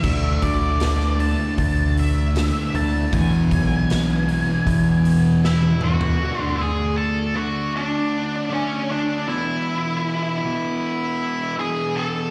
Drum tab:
CC |x---------------|----------------|----------------|----------------|
HH |--o-o-o-o-o-o-o-|o-o-o-o-o-o-----|----------------|----------------|
SD |----oo------o---|----o-------o---|----------------|----------------|
T1 |----------------|-------------o--|----------------|----------------|
T2 |----------------|--------------o-|----------------|----------------|
FT |----------------|---------------o|----------------|----------------|
BD |o-o-----o-------|o-o-----o-------|----------------|----------------|